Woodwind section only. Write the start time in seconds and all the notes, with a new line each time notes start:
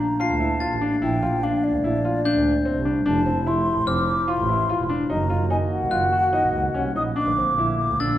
Already playing: A3 A#3 D4
3.07 F3 E4
5.09 D#3 A#3 F#4
7.15 D3 A3